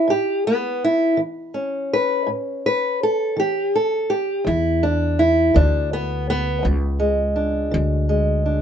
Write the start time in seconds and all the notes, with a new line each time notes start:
Already playing: E4
0.08 A2 G4
0.47 B3
0.84 E4
1.17 E3
1.54 C#4
1.93 B4
2.27 A2
2.66 B4
3.03 A4
3.37 E3 G4
3.76 A4
4.10 G4
4.45 E2 E4
4.83 D4
5.19 E4
5.54 D2 E3 D4
5.93 B3
6.30 B3
6.63 C#2 E2
7.00 G#3
7.36 D4
7.71 D2 E3
8.09 G#3
8.46 D4